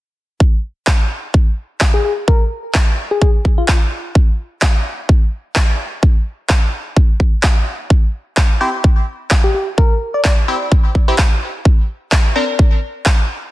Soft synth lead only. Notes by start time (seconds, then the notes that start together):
1.94 G#4
2.04 G#4
2.28 A#4
3.11 G#4
3.22 G#4
3.58 F4
3.68 F4
9.44 G4
9.54 G4
9.78 A#4
10.14 D5